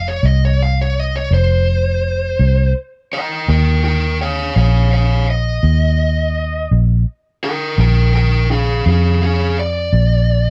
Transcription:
Already playing: fingered electric bass F1
0.08 lead electric guitar C#5
0.23 fingered electric bass C2, lead electric guitar D#5
0.45 lead electric guitar C#5
0.63 lead electric guitar F5
0.81 lead electric guitar C#5
1.00 lead electric guitar D#5
1.16 lead electric guitar C#5
1.31 fingered electric bass F1, lead electric guitar C5
2.39 fingered electric bass C2
3.13 lead electric guitar D#5 G5
3.48 fingered electric bass D#2, lead electric guitar A#4 G5
3.85 lead electric guitar A#4 G5
4.22 lead electric guitar C#5 F5
4.56 fingered electric bass A#1, lead electric guitar C#5 F5
4.93 lead electric guitar C#5 F5
5.30 lead electric guitar D#5
5.63 fingered electric bass D#2
6.71 fingered electric bass A#1
7.44 lead electric guitar A#4 G5
7.78 fingered electric bass A#1, lead electric guitar A#4 G5
8.16 lead electric guitar A#4 G5
8.51 lead electric guitar G#4 F5
8.86 fingered electric bass F2, lead electric guitar G#4 F5
9.23 lead electric guitar G#4 F5
9.59 lead electric guitar D5
9.93 fingered electric bass A#1

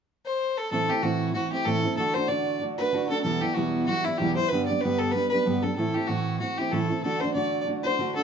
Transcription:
0.26 fiddle C5
0.58 fiddle A4
0.71 steel-string acoustic guitar A2 E3 A3 C4 E4, fiddle A4
0.89 steel-string acoustic guitar A3 C4 E4, fiddle G4
1.02 steel-string acoustic guitar A2 E3 A3 C4 E4, fiddle F#4
1.33 steel-string acoustic guitar E3 A3 C4 E4, fiddle F#4
1.51 steel-string acoustic guitar A3 C4 E4, fiddle G4
1.65 steel-string acoustic guitar A2 E3 A3 C4 E4, fiddle A4
1.83 steel-string acoustic guitar A3 C4 E4
1.97 steel-string acoustic guitar D3 A3 D4 F#4, fiddle A4
2.14 steel-string acoustic guitar D4 F#4, fiddle C5
2.19 steel-string acoustic guitar A3
2.28 steel-string acoustic guitar D3 A3 D4 F#4, fiddle D5
2.61 steel-string acoustic guitar D3 A3 D4 F#4
2.78 steel-string acoustic guitar A3 D4 F#4, fiddle B4
2.92 steel-string acoustic guitar D3 A3 D4 F#4
3.09 steel-string acoustic guitar A3 D4 F#4, fiddle A4
3.23 steel-string acoustic guitar E2 B2 E3 G3 B3 E4, fiddle A4
3.41 steel-string acoustic guitar E3 G3 B3 E4, fiddle G4
3.54 steel-string acoustic guitar E2 B2 E3 G3 B3 E4, fiddle F#4
3.86 steel-string acoustic guitar E3 G3 B3, fiddle F#4
3.90 steel-string acoustic guitar E4
4.04 steel-string acoustic guitar G3 B3 E4, fiddle E4
4.08 steel-string acoustic guitar E3
4.18 steel-string acoustic guitar E2 B2 E3 G3 B3 E4, fiddle G4
4.35 steel-string acoustic guitar G3 B3 E4, fiddle C5
4.40 steel-string acoustic guitar E3
4.48 steel-string acoustic guitar G2 D3, fiddle B4
4.53 steel-string acoustic guitar G3 B3 D4 G4
4.66 steel-string acoustic guitar G4, fiddle D5
4.70 steel-string acoustic guitar G3 B3 D4
4.81 steel-string acoustic guitar G2 D3 G3 B3, fiddle B4
4.85 steel-string acoustic guitar D4 G4
4.99 fiddle A4
5.12 steel-string acoustic guitar G3 B3, fiddle B4
5.17 steel-string acoustic guitar D4 G4
5.30 steel-string acoustic guitar G4, fiddle B4
5.34 steel-string acoustic guitar G3 B3 D4
5.45 steel-string acoustic guitar G2 D3 G3 B3 D4 G4
5.63 steel-string acoustic guitar G3 B3 D4 G4, fiddle A4
5.76 steel-string acoustic guitar A2 E3 A3 C4 E4, fiddle A4
5.94 steel-string acoustic guitar C4 E4, fiddle G4
5.99 steel-string acoustic guitar A3
6.07 steel-string acoustic guitar A2 E3 A3 C4 E4, fiddle F#4
6.40 steel-string acoustic guitar E3 A3 C4 E4, fiddle F#4
6.58 steel-string acoustic guitar A3 C4 E4, fiddle G4
6.72 steel-string acoustic guitar A2 E3 A3 C4 E4, fiddle A4
6.90 steel-string acoustic guitar A3 C4 E4
7.03 steel-string acoustic guitar D3 A3 D4 F#4, fiddle A4
7.21 steel-string acoustic guitar A3 D4 F#4, fiddle C5
7.34 steel-string acoustic guitar D3 A3 D4 F#4, fiddle D5
7.66 steel-string acoustic guitar D3 A3 D4 F#4
7.84 steel-string acoustic guitar A3 D4 F#4, fiddle C5
7.99 steel-string acoustic guitar D3 A3 D4 F#4
8.15 steel-string acoustic guitar D4 F#4, fiddle A4
8.20 steel-string acoustic guitar A3

